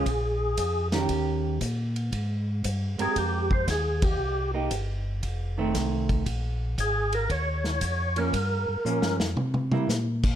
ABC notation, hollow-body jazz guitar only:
X:1
M:4/4
L:1/8
Q:"Swing" 1/4=116
K:Bbdor
V:1 name="Hollow-body jazz guitar"
z3 [E,DGB]3 z2 | z3 [A,CGB]3 z2 | z [B,EG] z3 [E,=A,C]3 | z6 z [F,B,D] |
z2 [F,B,D] z2 [G,B,=E] z2 |]